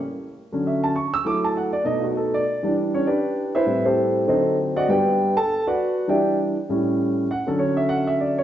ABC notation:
X:1
M:4/4
L:1/8
Q:"Swing" 1/4=199
K:D
V:1 name="Grand piano"
z4 e a c' e' | d' a f d ^d [=F^F] A =d- | d2 z [Cc] [DGBd]3 [EB=ce]- | [EB=ce] [=CGAc]3 [_EAc_e]2 z [Fdef] |
[GBdg]3 [Aa]2 [FBdf]3 | [Gdeg]2 z6 | f A c e f e d c |]
V:2 name="Grand piano" clef=bass
z3 [D,F,C]3 z2 | [F,A,E]3 z [B,,A,^D]4 | z [E,G,D]3 z4 | [A,,G,=C]4 [D,F,C]4 |
[G,,G,B,]3 z4 z | [E,G,D]3 z [A,,G,C]4 | z [D,F,C]6- [D,F,C] |]